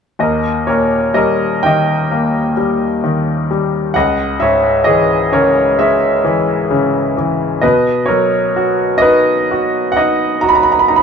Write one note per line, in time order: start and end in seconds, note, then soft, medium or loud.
0.19 3.90 D#2 soft
0.19 0.66 A#4 soft
0.19 0.69 D#5 soft
0.67 2.53 A#2 soft
0.67 1.13 A#4 soft
0.67 1.16 C#5 soft
1.14 2.55 G3 soft
1.14 1.60 A#4 soft
1.14 1.64 D#5 medium
1.63 3.02 D#3 soft
1.63 3.92 D#5 soft
1.63 4.02 G5 medium
2.11 3.91 A#3 soft
2.57 3.49 G3 soft
3.04 3.92 D#3 soft
3.51 3.94 G3 soft
3.94 7.60 C#2 soft
3.94 4.38 D#5 soft
3.94 4.42 F#5 medium
4.40 6.21 G#2 soft
4.40 4.85 C#5 soft
4.40 4.88 E5 soft
4.84 6.23 E3 soft
4.84 5.30 G#4 soft
4.84 5.29 D#5 medium
5.32 6.69 C#3 soft
5.32 5.77 A#4 soft
5.32 5.79 C#5 medium
5.79 7.59 G#3 soft
5.79 7.14 C#5 soft
5.79 7.13 E5 medium
6.24 7.16 E3 soft
6.71 7.60 C#3 soft
7.17 7.62 E3 soft
7.61 11.03 B2 soft
7.61 8.06 B4 medium
7.61 8.05 D#5 medium
8.06 8.98 A#4 soft
8.06 9.03 C#5 medium
8.10 9.93 F#3 soft
8.56 9.50 F#4 soft
8.98 9.92 B4 soft
8.98 9.95 D#5 medium
9.03 9.95 D#4 soft
9.51 10.41 F#4 soft
9.92 10.43 F#5 medium
9.97 10.88 D#4 soft
9.97 10.40 D#5 medium
10.41 11.03 F#4 soft
10.41 10.50 A#5 medium
10.49 10.58 B5 medium
10.55 10.65 A#5 medium
10.63 10.73 B5 medium
10.72 10.81 A#5 medium
10.79 10.89 B5 medium
10.88 11.03 D#4 soft
10.88 10.98 A#5 medium
10.96 11.03 B5 medium